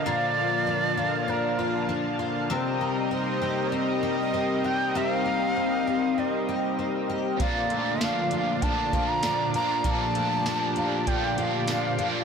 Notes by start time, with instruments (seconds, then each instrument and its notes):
Already playing: analog synth pad D3 F3 A#3 F5 A5
0.06 twelve-string acoustic guitar A#2 F4, shakuhachi D5
0.67 twelve-string acoustic guitar D4
0.97 twelve-string acoustic guitar F4
1.28 twelve-string acoustic guitar D4, shakuhachi A#4
1.59 twelve-string acoustic guitar F4
1.89 twelve-string acoustic guitar D4
2.19 twelve-string acoustic guitar F4
2.50 twelve-string acoustic guitar C3 G4, analog synth pad G3 C4 D#4 A#4 D#5, shakuhachi C5
2.81 twelve-string acoustic guitar A#3
3.11 twelve-string acoustic guitar C4, shakuhachi C5
3.42 twelve-string acoustic guitar G4
3.72 twelve-string acoustic guitar C4, shakuhachi D#5
4.03 twelve-string acoustic guitar G4
4.19 shakuhachi D#5
4.34 twelve-string acoustic guitar C4
4.64 twelve-string acoustic guitar G4, shakuhachi G5
4.95 twelve-string acoustic guitar C3 G4, shakuhachi E5
5.13 shakuhachi F5
5.26 twelve-string acoustic guitar A#3
5.57 twelve-string acoustic guitar C4
5.87 twelve-string acoustic guitar G4
6.18 twelve-string acoustic guitar C4, shakuhachi D#5
6.49 twelve-string acoustic guitar G4
6.79 twelve-string acoustic guitar C4
7.10 twelve-string acoustic guitar G4
7.37 overdriven electric guitar A#2 D3 F3, analog synth pad A#2 F3 D4 F4 D5, twelve-string acoustic guitar A#2 F4, kick, closed hi-hat
7.41 overdriven electric guitar A#3 D4, shakuhachi D5
7.45 overdriven electric guitar A4
7.70 twelve-string acoustic guitar A3, closed hi-hat
8.01 twelve-string acoustic guitar D4, shakuhachi F5, snare, closed hi-hat, tambourine
8.31 twelve-string acoustic guitar F4, closed hi-hat
8.61 overdriven electric guitar A#2 D3 F3 A#3 D4, twelve-string acoustic guitar D4, shakuhachi A5, kick, closed hi-hat
8.93 twelve-string acoustic guitar F4, kick, closed hi-hat
9.08 shakuhachi A#5
9.23 twelve-string acoustic guitar D4, snare, closed hi-hat, tambourine
9.54 overdriven electric guitar F3 A#3 D4, twelve-string acoustic guitar F4, shakuhachi A#5, closed hi-hat
9.83 overdriven electric guitar A#2 D3 F3 A#3 D4 A4, twelve-string acoustic guitar A#2 F4, analog synth pad G4, shakuhachi A#5, kick, closed hi-hat
9.90 shakuhachi A5
10.15 twelve-string acoustic guitar A3, closed hi-hat
10.44 overdriven electric guitar F3 A#3 D4, twelve-string acoustic guitar D4, snare, closed hi-hat, tambourine
10.50 overdriven electric guitar A4
10.76 twelve-string acoustic guitar F4, closed hi-hat
11.06 overdriven electric guitar A#2 D3 F3 A#3 D4 A4, twelve-string acoustic guitar D4, shakuhachi G5, kick, closed hi-hat
11.38 twelve-string acoustic guitar F4, closed hi-hat
11.68 twelve-string acoustic guitar D4, shakuhachi F5, snare, closed hi-hat, tambourine
11.98 overdriven electric guitar A#3 D4 A4, twelve-string acoustic guitar F4, closed hi-hat
12.03 overdriven electric guitar F3